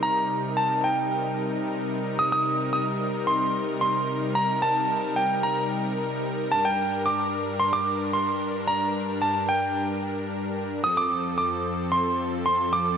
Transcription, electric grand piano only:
\new Staff \with { instrumentName = "Electric grand piano" } { \time 4/4 \key c \dorian \tempo 4 = 111 bes''4 a''8 g''4 r4. | ees'''16 ees'''8. ees'''4 c'''4 c'''4 | bes''8 a''4 g''8 bes''4 r4 | a''16 g''8. d'''4 c'''16 d'''8. c'''4 |
bes''4 a''8 g''4 r4. | ees'''16 d'''8. d'''4 c'''4 c'''8 d'''8 | }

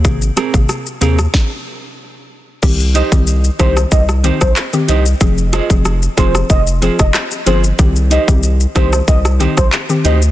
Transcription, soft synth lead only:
\new Staff \with { instrumentName = "Soft synth lead" } { \time 4/4 \key aes \lydian \tempo 4 = 93 r1 | \key c \minor r8 ees''16 r8. c''8 ees''16 r8 c''16 r8 ees''16 r16 | r8 ees''16 r8. c''8 ees''16 r8 ees''16 r8 c''16 r16 | r8 ees''16 r8. c''8 ees''16 r8 c''16 r8 ees''16 r16 | }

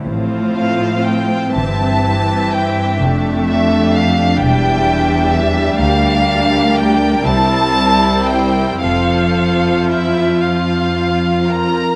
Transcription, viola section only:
\new Staff \with { instrumentName = "Viola section" } { \time 6/8 \key f \major \tempo 4. = 40 << { c'2. | d'2. | d'4. e'4. | f'2. | } \\ { f4. e4. | a4. g4.~ | g4. g4. | f2. | } >> }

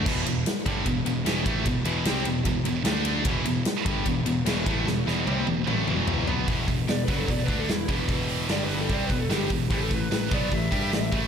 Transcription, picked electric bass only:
\new Staff \with { instrumentName = "Picked electric bass" } { \clef bass \time 4/4 \key e \minor \tempo 4 = 149 e,,8 e,,8 r8 g,,8 e,,8 e,,8 e,,8 a,,8 | e,,8 e,,8 c,8 e,,8 e,,8 e,,8 d,4 | e,,8 e,,8 r8 g,,8 e,,8 e,,8 e,,8 a,,8 | e,,8 e,,8 c,8 e,,8 a,,8 e,,4 b,,8 |
e,,8 e,,8 e,,8 fis,,8 e,,8 d,8 e,,8 e,,8~ | e,,4 g,,4 c,8 e,,8 g,,8 e,,8 | a,,8 a,,8 a,,8 b,,8 a,,8 g,8 a,,8 a,,8 | }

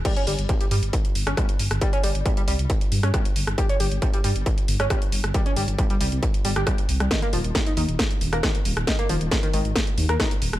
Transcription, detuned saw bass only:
\new Staff \with { instrumentName = "Detuned saw bass" } { \clef bass \time 4/4 \tempo 4 = 136 r8 g,,16 g,,16 r8 g,16 g,,16 r8 g,,16 g,,16 r8 g,,16 g,,16 | r8 g,,16 g,,16 r8 c,16 c,16 r8 g,16 g,16 r8 g,,16 g,,16 | r8 g,,16 g,,16 r8 g,16 g,,16 r8 g,,16 g,,16 r8 g,,16 g,,16 | r8 g,,16 g,,16 r8 c,16 c,16 r8 g,,16 g,,16 r8 c,16 c,16 |
r8 ees,,16 ees,,16 r8 ees,16 ees,,16 r8 ees,,16 ees,,16 r8 ees,,16 ees,,16 | r8 ees,,16 ees,,16 r8 aes,,16 aes,,16 r8 ees,16 ees,16 r8 ees,,16 ees,,16 | }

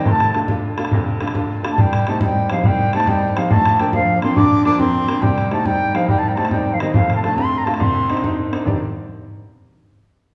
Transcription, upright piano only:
\new Staff \with { instrumentName = "Upright piano" } { \time 12/8 \key c \dorian \tempo 4. = 139 <f,, f,>4 <a d' f'>8 <a d' f'>4 <a d' f'>8 <f,, f,>4 <a d' f'>8 <a d' f'>4 <a d' f'>8 | c,4 <g c' ees'>8 <g c' ees'>4 <g c' ees'>8 c,4 <g c' ees'>8 <g c' ees'>4 <g c' ees'>8 | <bes,, bes,>4 <f bes d'>8 <f bes d'>4 <f bes d'>8 <bes,, bes,>4 <f bes d'>8 <f bes d'>4 <f bes d'>8 | <c, c>4 <g c' ees'>8 <g c' ees'>4 <g c' ees'>8 <c, c>4 <g c' ees'>8 <g c' ees'>4 <g c' ees'>8 |
<f,, f,>4 <a d' f'>8 <a d' f'>4 <a d' f'>8 c,4 <c' d' ees'>8 <c' d' ees'>4 <c' d' ees'>8 | <c, g, ees c' g' d''>8 r1 r4. | }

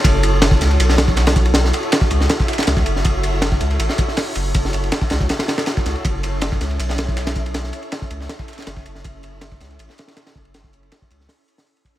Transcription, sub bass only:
\new Staff \with { instrumentName = "Sub bass" } { \clef bass \time 4/4 \key fis \minor \tempo 4 = 160 fis,,4. cis,8 b,,2~ | b,,8 r4 cis,8 r4 cis,8 fis,,8~ | fis,,4. cis,8 a,,8 r4 fis,,8~ | fis,,4 r8 cis,8 r4. cis,8 |
fis,,4. cis,8 b,,2~ | b,,8 r4 cis,8 r4 fis,,8 fis,,8~ | fis,,4. cis,8 a,,8 r4 fis,,8~ | fis,,4 r8 cis,8 r2 | }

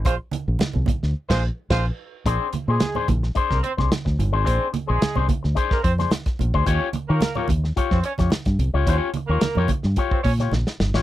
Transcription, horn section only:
\new Staff \with { instrumentName = "Horn section" } { \time 4/4 \key bes \major \tempo 4 = 109 <aes f' c''>16 r2 <aes f' c''>8 r16 <aes f' c''>8 r8 | <c' c''>8 r16 <aes aes'>8. r8. <bes bes'>16 <c' c''>16 r4 r16 | <c' c''>8 r16 <aes aes'>8. r8. <bes bes'>16 <c' c''>16 r4 r16 | <des' des''>8 r16 <bes bes'>8. r8. <c' c''>16 <des' des''>16 r4 r16 |
<des' des''>8 r16 <bes bes'>8. r8. <c' c''>16 <des' des''>16 r4 r16 | }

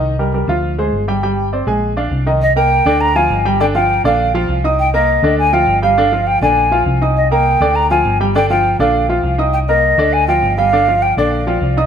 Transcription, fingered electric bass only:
\new Staff \with { instrumentName = "Fingered electric bass" } { \clef bass \time 4/4 \key c \minor \tempo 4 = 202 c,4. d,4. g,,4~ | g,,4. bes,,4. c,4~ | c,4. d,4. g,,4~ | g,,4. bes,,4. c,4~ |
c,4. d,4. g,,4~ | g,,4. bes,,4. c,4~ | c,4. d,4. g,,4~ | g,,4. bes,,4. c,4~ |
c,4. d,4. g,,4~ | g,,4. bes,,4. c,4 | }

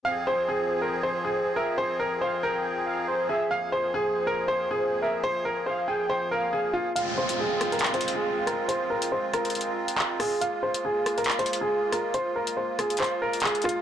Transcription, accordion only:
\new Staff \with { instrumentName = "Accordion" } { \time 4/4 \key f \minor \tempo 4 = 139 << { <f, f aes'>1~ | <f, f aes'>1~ | <f, f aes'>1~ | <f, f aes'>1 |
<aes f'>1~ | <aes f'>1~ | <aes f'>1~ | <aes f'>1 | } \\ { c'1~ | c'1 | bes1~ | bes1 |
c'1~ | c'1 | bes1~ | bes1 | } >> }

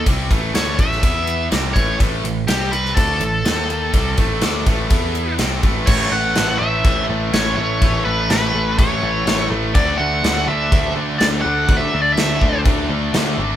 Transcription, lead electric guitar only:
\new Staff \with { instrumentName = "Lead electric guitar" } { \time 4/4 \key e \mixolydian \tempo 4 = 124 r4 cis''8 e''4. r8 cis''8 | r4 g'8 b'8 a'2~ | a'2. r4 | \key d \major cis''8 fis''4 e''4 r8 cis''8 cis''8~ |
cis''8 b'8 b'4 cis''4. r8 | d''8 fis''4 e''4 r8 d''8 fis''8~ | fis''16 e''8 d''16 e''4 r2 | }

